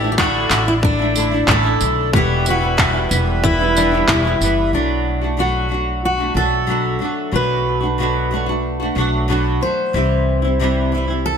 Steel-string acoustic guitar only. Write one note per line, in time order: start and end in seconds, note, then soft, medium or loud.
0.00 0.11 G4 loud
0.12 0.18 G4 medium
0.18 0.63 F#4 loud
0.68 0.73 E4 medium
0.84 1.50 D4 loud
1.51 2.10 A4 loud
2.16 2.45 G4 medium
2.50 3.09 F#4 medium
3.44 4.09 E4 loud
3.78 4.07 D4 medium
4.10 4.74 E4 medium
4.75 5.41 D4 medium
5.40 6.04 F#4 medium
6.05 6.35 F#4 medium
6.37 7.35 A4 loud
7.36 9.26 B4 medium
9.62 11.25 C5 medium
11.26 11.38 A4 medium